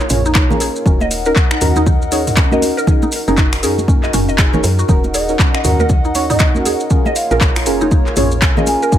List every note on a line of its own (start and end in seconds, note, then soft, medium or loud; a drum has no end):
0.00 0.84 A#3 medium
0.00 0.06 D#4 medium
0.00 0.84 F4 medium
0.00 0.82 A#4 medium
0.00 0.84 C#5 loud
0.00 maracas soft
0.10 0.69 A#1 loud
0.10 0.21 C#4 loud
0.10 0.21 F4 medium
0.10 0.21 G#4 medium
0.10 0.21 C#5 loud
0.10 mid tom medium
0.10 open hi-hat medium
0.10 muted conga soft
0.10 maracas medium
0.26 0.31 D#4 loud
0.26 maracas soft
0.35 0.50 D#4 medium
0.35 finger snap loud
0.35 kick loud
0.35 clap loud
0.35 maracas medium
0.50 0.83 C#4 loud
0.50 0.83 F4 loud
0.50 0.83 G#4 medium
0.50 0.83 A#4 loud
0.50 high conga loud
0.50 low conga loud
0.50 maracas soft
0.60 0.74 G#4 medium
0.60 open hi-hat medium
0.60 muted conga medium
0.60 maracas medium
0.76 maracas soft
0.86 1.32 D#1 loud
0.86 1.03 C#4 medium
0.86 0.99 C#4 medium
0.86 1.03 D#4 medium
0.86 6.87 D#4 medium
0.86 1.03 F#4 medium
0.86 2.85 A#4 medium
0.86 1.03 A#4 loud
0.86 2.86 D#5 medium
0.86 2.85 F#5 medium
0.86 kick loud
0.86 low conga loud
0.86 maracas medium
1.00 1.11 D#5 loud
1.00 muted conga medium
1.00 high conga loud
1.00 maracas soft
1.11 open hi-hat medium
1.11 maracas loud
1.25 1.34 C#4 medium
1.25 1.34 D#4 medium
1.25 1.34 F#4 medium
1.25 1.34 A#4 loud
1.25 1.35 A#4 loud
1.25 maracas soft
1.36 kick loud
1.36 clap loud
1.36 muted conga soft
1.36 maracas soft
1.51 1.57 D#4 medium
1.51 finger snap loud
1.51 maracas soft
1.61 2.71 D#2 medium
1.61 1.78 C#4 loud
1.61 1.78 D#4 medium
1.61 1.78 F#4 medium
1.61 1.78 A#4 loud
1.61 mid tom medium
1.61 open hi-hat loud
1.61 maracas loud
1.75 1.82 D#4 loud
1.75 muted conga medium
1.75 high conga medium
1.75 maracas soft
1.86 2.01 D#4 medium
1.86 kick loud
1.86 low conga loud
1.86 maracas medium
2.02 maracas soft
2.12 2.23 C#4 medium
2.12 2.23 D#4 medium
2.12 2.23 F#4 medium
2.12 2.25 G#4 medium
2.12 2.23 C#5 loud
2.12 open hi-hat medium
2.12 muted conga soft
2.12 maracas loud
2.27 mid tom medium
2.27 open hi-hat medium
2.27 maracas soft
2.37 2.51 C#4 medium
2.37 finger snap loud
2.37 kick loud
2.37 clap loud
2.37 maracas medium
2.52 2.85 C#4 loud
2.52 2.85 D#4 medium
2.52 2.85 F#4 medium
2.52 2.85 A#4 loud
2.52 2.62 D#5 loud
2.52 high conga loud
2.52 maracas soft
2.62 open hi-hat medium
2.62 muted conga medium
2.62 maracas medium
2.77 2.86 A#4 loud
2.77 maracas soft
2.87 3.04 C#4 medium
2.87 3.04 D#4 medium
2.87 4.87 F#4 medium
2.87 3.04 G#4 medium
2.87 3.04 A#4 loud
2.87 6.87 A#4 medium
2.87 kick loud
2.87 low conga medium
2.87 maracas medium
3.02 3.08 D#4 medium
3.02 muted conga soft
3.02 high conga loud
3.02 maracas soft
3.12 open hi-hat medium
3.12 maracas loud
3.28 3.65 F#1 medium
3.28 3.35 C#4 medium
3.28 3.35 D#4 medium
3.28 3.33 D#4 loud
3.28 3.35 G#4 medium
3.28 3.35 A#4 loud
3.28 maracas soft
3.37 3.52 D#4 medium
3.37 kick loud
3.37 clap loud
3.37 muted conga soft
3.37 maracas soft
3.53 finger snap loud
3.53 open hi-hat medium
3.53 maracas soft
3.63 4.09 F#2 medium
3.63 3.80 C#4 loud
3.63 3.80 D#4 medium
3.63 3.76 G#4 medium
3.63 3.80 G#4 loud
3.63 3.80 A#4 loud
3.63 open hi-hat medium
3.63 maracas medium
3.78 muted conga soft
3.78 high conga medium
3.78 maracas soft
3.88 4.02 C#4 medium
3.88 kick loud
3.88 high conga loud
3.88 maracas soft
4.03 4.13 D#5 loud
4.03 clap soft
4.03 maracas soft
4.13 4.63 F#1 medium
4.13 4.28 C#4 loud
4.13 mid tom medium
4.13 open hi-hat medium
4.13 muted conga soft
4.13 maracas loud
4.29 4.34 D#5 medium
4.29 maracas soft
4.38 4.50 C#4 medium
4.38 4.50 D#4 medium
4.38 4.50 G#4 medium
4.38 4.50 A#4 medium
4.38 finger snap loud
4.38 kick loud
4.38 clap loud
4.38 maracas medium
4.53 4.61 C#4 loud
4.53 4.61 D#4 medium
4.53 4.61 G#4 medium
4.53 4.63 A#4 medium
4.53 4.61 C#5 loud
4.53 high conga loud
4.53 low conga medium
4.53 maracas soft
4.64 4.84 F#2 loud
4.64 open hi-hat medium
4.64 muted conga medium
4.64 maracas medium
4.79 4.88 F#4 medium
4.79 maracas soft
4.88 5.35 D#1 loud
4.88 5.06 C#4 medium
4.88 5.06 D#4 medium
4.88 5.03 D#4 medium
4.88 5.06 F#4 medium
4.88 5.06 A#4 loud
4.88 6.89 D#5 medium
4.88 6.88 F#5 medium
4.88 kick loud
4.88 low conga medium
4.88 maracas medium
5.04 muted conga medium
5.04 high conga loud
5.04 maracas soft
5.14 5.28 G#4 medium
5.14 5.34 D#5 loud
5.14 open hi-hat medium
5.14 maracas medium
5.28 5.37 C#4 medium
5.28 5.37 D#4 medium
5.28 5.37 F#4 medium
5.28 5.37 A#4 loud
5.28 maracas soft
5.39 5.53 C#4 medium
5.39 kick loud
5.39 clap loud
5.39 muted conga soft
5.39 maracas soft
5.54 5.64 D#5 loud
5.54 finger snap medium
5.54 maracas soft
5.64 6.74 D#2 medium
5.64 5.81 C#4 loud
5.64 5.81 D#4 medium
5.64 5.82 F#4 medium
5.64 5.81 A#4 loud
5.64 mid tom medium
5.64 open hi-hat medium
5.64 maracas medium
5.79 5.89 A#4 loud
5.79 muted conga medium
5.79 high conga medium
5.79 maracas soft
5.89 kick loud
5.89 low conga loud
5.89 maracas medium
6.05 6.10 D#4 medium
6.05 maracas soft
6.15 6.26 C#4 medium
6.15 6.26 D#4 medium
6.15 6.26 F#4 medium
6.15 6.26 C#5 loud
6.15 open hi-hat medium
6.15 muted conga soft
6.15 maracas loud
6.30 6.35 D#4 loud
6.30 6.47 D#5 medium
6.30 mid tom medium
6.30 open hi-hat soft
6.30 maracas soft
6.39 6.55 D#4 medium
6.39 finger snap loud
6.39 kick loud
6.39 clap loud
6.39 maracas medium
6.55 6.88 C#4 loud
6.55 6.88 D#4 loud
6.55 6.88 F#4 medium
6.55 6.88 A#4 loud
6.55 high conga medium
6.55 maracas soft
6.65 6.79 G#4 medium
6.65 open hi-hat medium
6.65 muted conga soft
6.65 maracas medium
6.80 maracas soft
6.90 8.90 A#3 medium
6.90 7.08 C#4 medium
6.90 7.04 C#4 medium
6.90 8.90 F4 medium
6.90 7.08 F4 medium
6.90 7.08 G#4 medium
6.90 7.08 A#4 loud
6.90 8.98 A#4 medium
6.90 8.90 C#5 medium
6.90 kick loud
6.90 low conga medium
6.90 maracas medium
7.05 7.16 D#5 loud
7.05 muted conga medium
7.05 high conga loud
7.05 maracas soft
7.16 7.36 F5 medium
7.16 open hi-hat medium
7.16 maracas medium
7.31 7.68 A#1 medium
7.31 7.39 C#4 medium
7.31 7.39 F4 medium
7.31 7.38 G#4 medium
7.31 7.38 A#4 loud
7.31 7.40 A#4 loud
7.31 maracas soft
7.41 kick loud
7.41 clap loud
7.41 muted conga soft
7.41 maracas soft
7.56 7.62 D#4 medium
7.56 finger snap medium
7.56 open hi-hat soft
7.56 maracas soft
7.66 8.13 F1 medium
7.66 7.83 C#4 loud
7.66 7.83 F4 medium
7.66 7.83 G#4 medium
7.66 7.83 A#4 loud
7.66 open hi-hat medium
7.66 maracas medium
7.81 7.87 D#4 loud
7.81 muted conga soft
7.81 high conga medium
7.81 maracas soft
7.91 8.06 D#4 medium
7.91 kick loud
7.91 high conga loud
7.91 maracas soft
8.07 clap soft
8.07 maracas soft
8.16 8.76 A#1 loud
8.16 8.28 C#4 loud
8.16 8.28 F4 medium
8.16 8.30 G#4 medium
8.16 8.28 G#4 medium
8.16 8.28 C#5 loud
8.16 mid tom medium
8.16 open hi-hat medium
8.16 muted conga soft
8.16 maracas medium
8.31 maracas soft
8.42 8.56 C#4 medium
8.42 finger snap medium
8.42 kick loud
8.42 clap loud
8.42 maracas medium
8.57 8.90 C#4 loud
8.57 8.90 F4 medium
8.57 8.90 G#4 medium
8.57 8.90 A#4 loud
8.57 8.67 D#5 loud
8.57 high conga medium
8.57 low conga medium
8.57 maracas soft
8.67 8.98 G#5 loud
8.67 open hi-hat medium
8.67 muted conga medium
8.67 maracas medium
8.82 8.92 A#4 loud
8.82 maracas soft
8.92 8.98 D#1 loud
8.92 8.98 C#4 medium
8.92 8.98 D#4 medium
8.92 8.98 F#4 medium
8.92 8.98 A#4 loud
8.92 8.98 D#5 medium
8.92 8.98 F#5 medium
8.92 kick loud
8.92 low conga medium
8.92 maracas medium